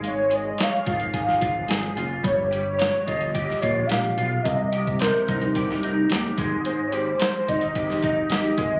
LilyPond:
<<
  \new Staff \with { instrumentName = "Soft synth lead" } { \time 4/4 \key aes \major \tempo 4 = 109 des''8 ees''8 f''2~ f''8 r8 | des''8 des''4 ees''8 ees''8 des''8 f''4 | ees''4 bes'4 r2 | c''16. des''32 c''4 ees''4 ees''4. | }
  \new Staff \with { instrumentName = "Clean electric guitar" } { \time 4/4 \key aes \major aes8 aes'8 des''8 f'8 aes'8 f'8 aes'8 f'8 | g8 g'8 des''8 f'8 g'8 f'8 g'8 f'8 | c8 g'8 c''8 ees'8 g'8 ees'8 g'8 aes8 | aes8 g'8 c''8 ees'8 g'8 ees'8 g'8 aes8 | }
  \new Staff \with { instrumentName = "Analog synth bass" } { \clef bass \time 4/4 \key aes \major aes,,4~ aes,,16 r16 aes,,4. aes,,8 ges,,8 | g,,4~ g,,16 r16 g,,4 bes,,8 bes,,8 ces,8 | c,4~ c,16 r16 c,4. ees,8 aes,,8~ | aes,,4~ aes,,16 r16 aes,,4. aes,,8 aes,,8 | }
  \new DrumStaff \with { instrumentName = "Drums" } \drummode { \time 4/4 hh8 hh8 <hh sn>8 <hh bd>16 hh16 <hh bd>16 sn16 <hh bd>8 <hh sn>16 hh16 hh8 | <hh bd>8 hh8 <hh sn>8 <hh bd>16 hh16 <hh bd>16 sn16 <hh bd>8 <hh sn>16 hh16 hh8 | <hh bd>8 hh16 bd16 <hh sn>8 <hh bd>16 hh16 <hh bd>16 sn16 hh8 <hh sn>16 hh16 <hh bd>8 | hh8 hh8 <hh sn>8 <hh bd>16 hh16 <hh bd>16 sn16 <hh bd>8 <hh sn>16 hh16 <hh bd>8 | }
>>